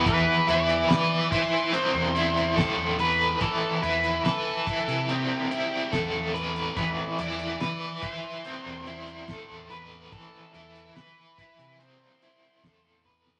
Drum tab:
HH |x-xxx-x-x-xxx-x-|x-xxx-xxx-x-x-xx|x-xxx-x-x-xxx-x-|x-xxx-xxx-x-x---|
SD |----o-------o---|----o-------o---|----o-------o---|----o-------o--o|
BD |o-----o-----o---|o-----o-----o---|o-----o-----o---|o-----o-----o-o-|